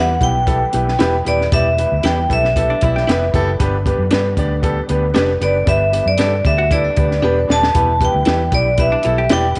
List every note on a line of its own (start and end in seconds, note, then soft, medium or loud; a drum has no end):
0.00 0.17 E2 loud
0.00 3.55 E3 medium
0.00 9.59 G3 medium
0.00 9.59 B3 medium
0.00 0.10 G4 medium
0.00 0.10 B4 medium
0.00 0.24 F#5 loud
0.20 0.64 B1 loud
0.20 0.36 B3 medium
0.20 0.36 E4 medium
0.20 0.36 G4 medium
0.20 0.36 B4 medium
0.20 1.29 G5 loud
0.20 kick medium
0.20 closed hi-hat medium
0.46 0.62 B3 medium
0.46 0.62 E4 medium
0.46 0.62 G4 medium
0.46 0.62 A4 medium
0.46 kick loud
0.46 closed hi-hat medium
0.73 0.95 B1 medium
0.73 0.88 B3 medium
0.73 0.88 E4 medium
0.73 0.88 G4 medium
0.73 0.89 B4 medium
0.73 closed hi-hat medium
0.88 snare soft
0.99 1.21 E1 medium
0.99 1.14 B3 loud
0.99 1.14 E4 medium
0.99 1.14 E4 loud
0.99 1.15 G4 loud
0.99 1.15 G4 medium
0.99 1.15 B4 loud
0.99 snare loud
0.99 closed hi-hat medium
1.25 1.47 D#1 medium
1.25 1.40 B3 loud
1.25 1.40 E4 medium
1.25 1.41 G4 medium
1.25 1.41 B4 loud
1.25 1.39 D5 medium
1.25 closed hi-hat medium
1.41 snare soft
1.52 1.84 E1 loud
1.52 1.66 B3 loud
1.52 1.67 E4 medium
1.52 1.67 G4 medium
1.52 1.67 D5 loud
1.52 2.01 E5 medium
1.52 kick loud
1.52 closed hi-hat loud
1.77 1.92 B3 medium
1.77 1.93 E4 medium
1.77 1.93 G4 medium
1.77 1.93 B4 medium
1.77 closed hi-hat medium
1.92 2.02 D2 medium
2.03 2.25 E2 loud
2.03 2.18 B3 medium
2.03 2.18 E4 loud
2.03 2.18 E4 medium
2.03 2.19 G4 medium
2.03 2.19 G4 loud
2.03 2.19 B4 medium
2.03 2.19 B4 loud
2.03 2.31 G5 loud
2.03 snare medium
2.03 closed hi-hat medium
2.29 2.73 B1 medium
2.29 2.44 B3 medium
2.29 2.44 E4 medium
2.29 2.44 G4 medium
2.29 2.45 A4 medium
2.29 3.31 E5 medium
2.29 kick medium
2.29 closed hi-hat medium
2.44 snare soft
2.55 2.70 B3 medium
2.55 2.70 E4 medium
2.55 2.71 G4 medium
2.55 2.71 A4 medium
2.55 kick medium
2.55 closed hi-hat medium
2.70 2.83 D4 medium
2.81 3.04 B1 medium
2.81 2.97 B3 medium
2.81 2.97 E4 medium
2.81 2.95 E4 medium
2.81 2.97 G4 medium
2.81 2.97 D5 medium
2.81 kick medium
2.81 closed hi-hat medium
2.96 3.57 G4 medium
2.96 snare soft
3.07 3.29 F1 medium
3.07 3.23 B3 loud
3.07 3.22 E4 medium
3.07 3.23 E4 loud
3.07 3.23 G4 medium
3.07 3.23 G4 loud
3.07 3.23 B4 loud
3.07 3.23 B4 medium
3.07 snare loud
3.07 closed hi-hat medium
3.34 3.55 F#1 loud
3.34 3.48 B3 loud
3.34 3.49 E4 loud
3.34 3.49 G4 loud
3.34 3.49 A4 loud
3.34 kick loud
3.34 closed hi-hat medium
3.59 3.92 G1 loud
3.59 7.72 D3 medium
3.59 3.74 B3 loud
3.59 3.74 D4 medium
3.59 3.75 G4 loud
3.59 3.75 B4 loud
3.59 kick loud
3.59 closed hi-hat loud
3.86 4.00 B3 medium
3.86 4.00 D4 medium
3.86 4.01 G4 medium
3.86 4.01 B4 medium
3.86 kick medium
3.86 closed hi-hat medium
3.98 4.09 F#2 medium
4.11 4.33 G2 loud
4.11 4.26 B3 medium
4.11 4.26 D4 loud
4.11 4.26 D4 medium
4.11 4.26 G4 medium
4.11 4.27 G4 loud
4.11 4.27 B4 medium
4.11 4.27 B4 loud
4.11 snare loud
4.11 closed hi-hat medium
4.37 4.80 D2 loud
4.37 4.52 B3 medium
4.37 4.52 D4 medium
4.37 4.52 G4 medium
4.37 4.53 D5 loud
4.37 kick medium
4.37 closed hi-hat medium
4.62 4.77 B3 medium
4.62 4.78 D4 medium
4.62 4.78 G4 medium
4.62 4.78 A4 medium
4.62 kick medium
4.62 closed hi-hat medium
4.89 5.11 D2 loud
4.89 5.04 B3 medium
4.89 5.04 D4 medium
4.89 5.04 G4 medium
4.89 5.04 B4 medium
4.89 closed hi-hat medium
5.14 5.37 F1 medium
5.14 5.29 B3 loud
5.14 5.30 D4 loud
5.14 5.30 D4 medium
5.14 5.30 G4 loud
5.14 5.30 G4 medium
5.14 5.30 B4 loud
5.14 5.31 B4 medium
5.14 snare loud
5.14 closed hi-hat medium
5.41 5.63 F#1 medium
5.41 5.56 B3 loud
5.41 5.56 D4 medium
5.41 5.56 G4 medium
5.41 5.57 B4 loud
5.41 5.66 D5 medium
5.41 closed hi-hat medium
5.66 5.99 G1 loud
5.66 5.81 B3 medium
5.66 5.82 D4 medium
5.66 5.82 G4 medium
5.66 5.82 B4 loud
5.66 6.08 E5 medium
5.66 kick loud
5.66 closed hi-hat medium
5.92 6.07 B3 medium
5.92 6.07 D4 medium
5.92 6.08 G4 medium
5.92 6.08 B4 medium
5.92 closed hi-hat medium
6.06 6.17 F#2 medium
6.06 6.43 D5 medium
6.18 6.40 G2 loud
6.18 6.34 B3 medium
6.18 6.34 D4 medium
6.18 6.34 G4 medium
6.18 6.34 A4 medium
6.18 6.35 B4 medium
6.18 snare medium
6.18 closed hi-hat medium
6.45 6.88 D2 loud
6.45 6.60 B3 medium
6.45 6.60 D4 medium
6.45 6.60 G4 medium
6.45 6.60 D5 medium
6.45 6.72 E5 medium
6.45 kick medium
6.45 closed hi-hat medium
6.58 6.71 F#4 medium
6.71 6.86 B3 medium
6.71 6.86 D4 medium
6.71 6.84 E4 medium
6.71 6.86 G4 medium
6.71 6.87 A4 medium
6.71 7.52 D5 medium
6.71 kick medium
6.71 closed hi-hat medium
6.84 7.58 D4 medium
6.97 7.19 D2 medium
6.97 7.12 B3 medium
6.97 7.12 D4 medium
6.97 7.12 G4 medium
6.97 7.12 B4 medium
6.97 kick medium
6.97 closed hi-hat medium
7.11 snare soft
7.23 7.44 E1 medium
7.23 7.38 B3 loud
7.23 7.38 D4 medium
7.23 7.38 G4 medium
7.23 7.38 G4 loud
7.23 7.38 B4 loud
7.23 7.39 B4 medium
7.48 7.71 D#1 medium
7.48 7.63 B3 medium
7.48 7.64 D4 medium
7.48 7.64 G4 medium
7.48 7.64 D5 loud
7.48 snare medium
7.52 8.04 A5 loud
7.63 snare medium
7.74 8.07 E1 loud
7.74 9.59 E3 medium
7.74 7.89 B3 medium
7.74 7.90 E4 medium
7.74 7.90 G4 medium
7.74 7.90 B4 loud
7.74 kick loud
7.74 closed hi-hat loud
8.00 8.15 B3 medium
8.00 8.16 E4 medium
8.00 8.16 G4 medium
8.00 8.16 B4 medium
8.00 kick medium
8.00 closed hi-hat medium
8.05 8.51 G5 medium
8.15 8.25 D2 medium
8.25 8.48 E2 loud
8.25 8.41 B3 medium
8.25 8.41 E4 medium
8.25 8.42 G4 medium
8.25 8.42 B4 medium
8.25 8.42 B4 loud
8.25 snare loud
8.25 closed hi-hat medium
8.52 8.95 B1 loud
8.52 8.67 B3 medium
8.52 8.67 E4 medium
8.52 8.67 G4 medium
8.52 8.68 B4 medium
8.52 8.80 D5 medium
8.52 kick medium
8.52 closed hi-hat medium
8.77 8.93 B3 medium
8.77 8.93 E4 medium
8.77 8.93 G4 medium
8.77 8.94 B4 medium
8.77 9.28 E5 medium
8.77 kick medium
8.77 closed hi-hat medium
8.92 9.05 D4 medium
9.03 9.27 B1 loud
9.03 9.19 B3 medium
9.03 9.19 E4 medium
9.03 9.17 E4 medium
9.03 9.19 G4 medium
9.03 9.20 A4 medium
9.03 closed hi-hat medium
9.18 9.59 G4 medium
9.29 9.52 E1 medium
9.29 9.45 B3 loud
9.29 9.45 E4 medium
9.29 9.46 E4 medium
9.29 9.46 G4 medium
9.29 9.46 B4 loud
9.29 9.46 D5 loud
9.29 9.56 G5 loud
9.29 snare loud
9.29 closed hi-hat medium
9.55 closed hi-hat medium